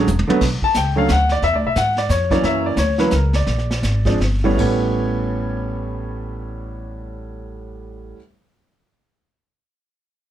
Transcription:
0.07 E1, hi-hat pedal, high tom
0.19 high tom
0.27 D3 F#3 A3 B3, muted upright bass stroke, high tom
0.41 B1, brush sweep, kick, snare, crash
0.62 A5, muted upright bass stroke, kick
0.74 C#2 G5, snare, hi-hat pedal
0.96 D3 F#3 A3 C#4 F5
1.08 D2 F#5, snare, hi-hat pedal
1.29 D5, snare
1.42 E2 E5, brush sweep, snare
1.53 D2 D5
1.65 B1 E5
1.76 G#2 F#5, snare, hi-hat pedal
1.97 D5, snare
2.09 F2 C#5, snare, hi-hat pedal
2.30 E3 F#3 A#3 C#4 D5, kick, snare
2.43 F#2 E5, brush sweep, snare
2.66 D5
2.77 D2 C#5, snare, hi-hat pedal
2.98 E3 F#3 A#3 C#4 B4, snare
3.11 C#2 A#4, snare, hi-hat pedal
3.33 D5, snare
3.46 A#1, brush sweep, snare
3.58 snare
3.71 snare
3.82 G#1, snare, hi-hat pedal
4.05 F3 G#3 C4 D4, kick, snare
4.20 G1, snare
4.44 A2 E3 G3 B3 C#4
4.57 A1 A2 G3 B3 C#4 C#5, kick, crash

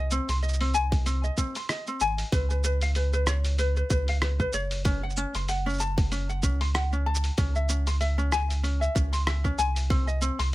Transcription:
Already playing: C2 D#5
0.11 C4, shaker
0.29 C2 C6, open hi-hat, shaker
0.43 D#5, shaker
0.49 shaker
0.53 shaker
0.61 C4, open hi-hat, shaker
0.74 G#5, shaker
0.92 kick, open hi-hat, shaker
1.06 C4, open hi-hat, shaker
1.24 D#5, shaker
1.38 C4, kick, shaker
1.55 C6, open hi-hat, shaker
1.69 D#5, cross-stick, open hi-hat, shaker
1.87 C4, shaker
2.00 G#1 G#5, shaker
2.18 open hi-hat, shaker
2.32 C#2 B4, kick, open hi-hat, shaker
2.50 B4, shaker
2.64 B4, shaker
2.81 F5, open hi-hat, shaker
2.95 B4, open hi-hat, shaker
3.13 B4, shaker
3.27 C#5, cross-stick, shaker
3.45 open hi-hat, shaker
3.58 B4, open hi-hat, shaker
3.76 B4, shaker
3.90 C#2 B4, kick, shaker
4.08 F5, open hi-hat
4.22 B4, cross-stick, open hi-hat, shaker
4.40 B4, kick, shaker
4.53 F#1 C#5, shaker
4.71 open hi-hat, shaker
4.85 C#4, kick, open hi-hat, shaker
5.03 F#5
5.10 shaker
5.17 C#4, shaker
5.35 F#1 C6, open hi-hat, shaker
5.49 F#5, open hi-hat, shaker
5.66 C#4, shaker
5.69 shaker
5.74 shaker
5.76 shaker
5.78 A5, shaker
5.80 shaker
5.98 kick, open hi-hat, shaker
6.12 C#4, open hi-hat, shaker
6.29 F#5, shaker
6.43 C#2 C#4, kick, shaker
6.61 C6, open hi-hat
6.75 F#5, cross-stick, open hi-hat, shaker
6.93 C#4, shaker
7.06 A5
7.15 shaker
7.24 open hi-hat, shaker
7.38 C#2 C#4, kick, open hi-hat, shaker
7.55 E5, shaker
7.69 C#4, shaker
7.87 C6, open hi-hat, shaker
8.01 E5, open hi-hat, shaker
8.18 C#4, shaker
8.32 G#5, cross-stick, shaker
8.50 open hi-hat, shaker
8.63 C#4, open hi-hat, shaker
8.81 E5, shaker
8.95 C#2 C#4, kick, shaker
9.13 C6, open hi-hat, shaker
9.27 E5, cross-stick, open hi-hat, shaker
9.44 C#4, kick, shaker
9.58 C2 G#5, shaker
9.76 open hi-hat, shaker
9.90 C4, kick, open hi-hat, shaker
10.07 D#5, shaker
10.21 C4, shaker
10.39 C2 C6, open hi-hat, shaker

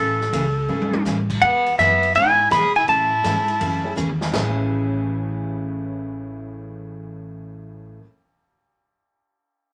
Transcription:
Already playing: A1 C#3 E3 A3 C#4 G#4 A4
0.21 snare
0.33 C#2 C#3 E3 A3 C#4 G#4, hi-hat pedal, ride
0.68 G#1 C#3 E3 A3 C#4 G#4
0.82 high tom
0.93 high tom
1.05 A1 C#3 E3 A3 C#4 G#4, snare, hi-hat pedal
1.30 kick, crash
1.41 E2 E3 G#3 B3 E4 G#4 F#5
1.66 ride
1.78 F#2 E3 G#3 B3 E4 G#4 E5, snare, hi-hat pedal, ride
2.03 ride
2.14 G#2 E3 G#3 B3 E4 G#4 G#5, ride
2.50 B2 E3 G#3 B3 E4 G#4 B5, snare, hi-hat pedal, ride
2.76 E4 G#5, ride
2.87 A2 C#3 E3 A3 C#4 E4 G#4 A5, ride
3.23 G#2 C#3 E3 A3 C#4 E4 G#4 A4, snare, hi-hat pedal, ride
3.48 ride
3.60 F#2 C#3 E3 A3 C#4 G#4, ride
3.83 A3 C#4 E4 G#4 A4
3.96 E2 C#3 E3 A3 C#4 G#4, hi-hat pedal, mid tom
4.09 mid tom
4.21 snare
4.32 A1 A2 C#3 E3 A3 C#4 G#4 B4, snare, splash

